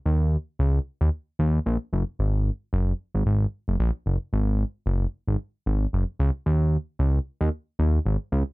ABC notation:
X:1
M:4/4
L:1/16
Q:"Swing 16ths" 1/4=112
K:Ebm
V:1 name="Analog synth bass" clef=bass
E,,3 z D,,2 z E,, z2 E,,2 B,,, z G,,, z | A,,,3 z G,,,2 z A,,, A,,,2 z G,,, B,,, z G,,, z | A,,,3 z G,,,2 z A,,, z2 A,,,2 G,,, z D,, z | E,,3 z D,,2 z E,, z2 E,,2 A,,, z D,, z |]